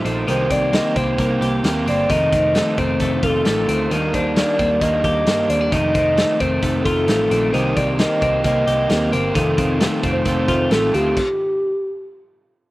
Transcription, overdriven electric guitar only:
0.05 D#3 A3 D#4
0.27 C3 D#3 A#3 C4 G4
0.50 A#3 C4 G4
0.73 C3 D#3 A#3 C4 G4
0.95 A#3 C4 G4
1.18 D#3 A#3 C4 G4
1.41 A#3 C4 G4
1.63 C3 D#3 A#3 C4 G4
1.86 A#3 C4 G4
2.09 F2 C3 D#3 A3 D#4
2.32 D#3 A3 D#4
2.55 F2 C3 D#3 A3 D#4
2.77 D#3 A3 D#4
3.00 C3 D#3 A3 D#4
3.23 D#3 A3 D#4
3.45 F2 C3 D#3 A3 D#4
3.69 D#3 A3 D#4
3.91 D#3 G3 A#3 D4
4.14 G3 A#3 D4
4.36 D#3 G3 A#3 D4
4.58 G3 A#3 D4
4.81 D#3 G3 A#3 D4
5.04 G3 A#3 D4
5.26 D#3 G3 A#3 D4
5.48 G3 A#3 D4
5.71 F2 C3 D#3 A3 D#4
5.93 D#3 A3 D#4
6.16 F2 C3 D#3 A3 D#4
6.39 D#3 A3 D#4
6.61 C3 D#3 A3 D#4
6.85 D#3 A3 D#4
7.07 F2 C3 D#3 A3 D#4
7.30 D#3 A3 D#4
7.52 C3 D#3 A#3 C4 G4
7.75 A#3 C4 G4
7.98 C3 D#3 A#3 C4 G4
8.21 A#3 C4 G4
8.44 D#3 A#3 C4 G4
8.66 A#3 C4 G4
8.89 C3 D#3 A#3 C4 G4
9.11 A#3 C4 G4
9.34 F2 C3 D#3 A3 C4 F4
9.57 D#3 A3 C4 F4
9.80 F2 C3 D#3 A3 C4 F4
10.02 D#3 A3 C4 F4
10.25 D#3 A3 C4 F4
10.48 D#3 A3 C4 F4
10.70 F2 C3 D#3 A3 C4 F4
10.93 D#3 A3 C4 F4

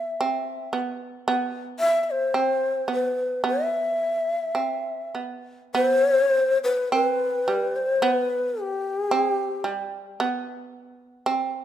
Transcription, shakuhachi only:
Already playing: E5
1.80 E5
2.03 E5
2.11 C5
2.92 B4
3.48 E5
5.75 C5
6.64 B4
6.93 B4
7.76 C5
8.04 B4
8.61 G4
9.20 G#4
9.31 G4

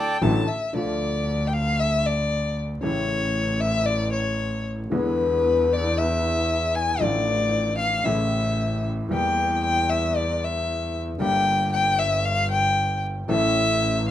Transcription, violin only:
Already playing: G5
0.22 A5
0.48 E5
0.77 D5
1.47 G5
1.53 F5
1.79 E5
2.06 D5
2.84 C#5
3.61 E5
3.86 D5
4.13 C#5
4.95 B4
5.73 D5
5.98 E5
6.75 G#5
7.01 D5
7.78 F5
8.04 E5
9.14 G5
9.65 G5
9.90 E5
10.16 D5
10.44 E5
11.21 G5
11.73 G5
11.99 E5
12.25 F5
12.51 G5
13.30 E5

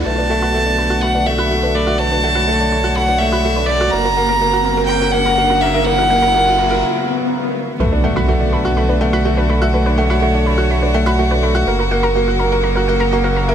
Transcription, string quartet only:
0.05 D3 A3 B3 F#4
2.00 C#5
3.92 C#3 F#3 A#3
5.86 E4
7.79 D3 A3 B3 F#4
9.74 C#5
11.66 C#3 F#3 A#3

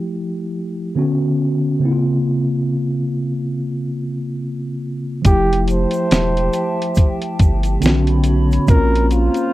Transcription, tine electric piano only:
Already playing: F3 A3 E4 G4
0.95 D3 B3 C#4 F#4
1.79 C#3 A#3 C4
1.85 E4
1.92 F4
5.22 F3 A3
5.26 E4 G4
7.80 D3 B3 C#4 F4
7.89 F#4
8.66 C3 A#3 C4
8.72 C#4 F4

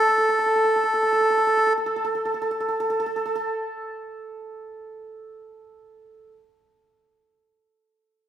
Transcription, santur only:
0.09 A4
0.18 A4
0.29 A4
0.39 A4
0.46 A4
0.56 A4
0.65 A4
0.76 A4
0.84 A4
0.94 A4
1.03 A4
1.13 A4
1.21 A4
1.30 A4
1.37 A4
1.47 A4
1.57 A4
1.67 A4
1.78 A4
1.86 A4
1.96 A4
2.05 A4
2.15 A4
2.25 A4
2.34 A4
2.42 A4
2.51 A4
2.60 A4
2.68 A4
2.80 A4
2.90 A4
3.00 A4
3.06 A4
3.16 A4
3.25 A4
3.35 A4

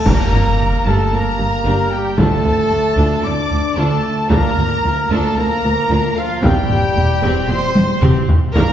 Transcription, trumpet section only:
0.07 A#4
0.86 A4
1.13 A#4
1.92 G4
2.18 A4
3.25 D5
3.78 A4
4.31 A#4
5.10 A4
5.37 A#4
6.17 F4
6.43 G4
7.49 C5
8.56 A#4

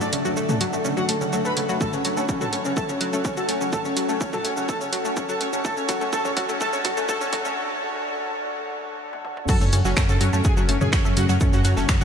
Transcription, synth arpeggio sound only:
0.01 A3
0.13 C#3
0.25 F#3
0.37 A3
0.49 C#3
0.61 F#3
0.73 A3
0.85 C#3
0.97 F#3
1.09 A3
1.21 C#3
1.33 F#3
1.45 A3
1.57 C#3
1.69 F#3
1.81 A3
1.93 C#3
2.05 F#3
2.17 A3
2.29 C#3
2.41 F#3
2.53 A3
2.65 C#3
2.77 A3
2.89 C#3
3.01 F#3
3.13 A3
3.25 C#3
3.37 F#3
3.49 A3
3.61 C#3
3.73 A3
3.85 C#3
3.97 F#3
4.09 A3
4.21 C#3
4.33 F#3
4.45 A3
4.57 C#3
4.69 A3
4.81 C#3
4.93 F#3
5.05 A3
5.17 C#3
5.29 F#3
5.41 A3
5.53 C#3
5.65 A3
5.77 C#3
5.89 F#3
6.01 A3
6.13 A3
6.25 C#3
6.37 F#3
6.49 A3
6.61 A3
6.73 C#3
6.85 F#3
6.97 A3
7.09 A3
7.21 C#3
7.33 F#3
7.45 A3
9.49 F#3 F#4
9.61 A3 A4
9.73 C#3 C#4
9.85 F#3 F#4
9.97 A3 A4
10.09 C#3 C#4
10.21 F#3 F#4
10.33 A3 A4
10.45 C#3 C#4
10.57 F#3 F#4
10.69 A3 A4
10.81 C#3 C#4
10.93 F#3 F#4
11.05 A3 A4
11.17 C#3 C#4
11.29 F#3 F#4
11.41 A3 A4
11.53 C#3 C#4
11.65 F#3 F#4
11.77 A3 A4
11.89 C#3 C#4

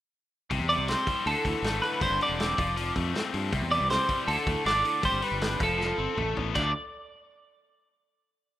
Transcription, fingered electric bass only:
0.51 C2
0.59 E2
0.77 C2
1.26 D2
1.45 D2
1.63 G#1
2.01 G1
2.10 G1
2.29 E1
2.59 F1
2.96 F2
3.34 G2
3.53 C2
3.61 E2
3.81 C2
4.28 D2
4.46 D2
4.66 G#1
5.04 G1
5.12 G1
5.32 G1
5.60 F1
5.98 G1
6.17 A1
6.37 A1
6.56 D2

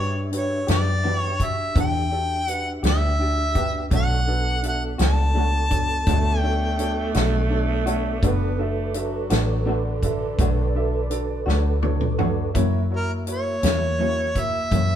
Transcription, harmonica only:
Already playing: C#5
0.37 C#5
0.72 D5
1.18 C#5
1.44 E5
1.80 G5
2.48 F#5
2.89 E5
3.96 F#5
4.68 F#5
5.04 A5
6.40 G5
12.97 A#4
13.32 C#5
14.40 E5

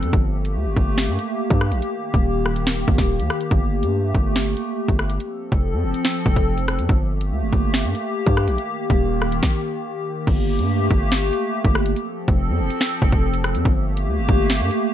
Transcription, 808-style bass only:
0.03 F2
0.13 G1
0.55 D2
0.66 G1
0.77 G1
1.08 G2
1.50 G2
1.72 A#1
2.14 D#1
2.88 G1
2.98 D#1
3.19 D#2
3.51 G1
3.83 G2
4.15 G1
4.88 G1
5.52 F1
5.73 F2
5.84 F1
6.26 F1
6.36 F1
6.79 F2
6.89 G1
7.31 D2
7.42 G1
7.53 G1
7.84 G2
8.27 G2
8.48 A#1
8.90 D#1
10.27 G1
10.59 G2
10.91 G1
11.65 G1
12.28 F1
12.49 F2
12.60 F1
13.02 F1
13.12 F1
13.55 F2
13.65 G1
14.08 D2
14.18 G1
14.29 G1
14.60 G2

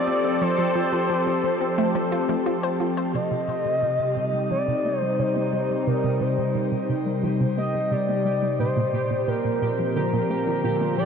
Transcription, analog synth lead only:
Already playing: D5
0.42 C5
3.14 D#5
4.51 D5
4.99 C5
5.19 C5
5.87 A#4
6.21 C5
7.58 D#5
7.91 D5
8.59 C5
9.28 A#4
9.96 A#4
10.98 D5

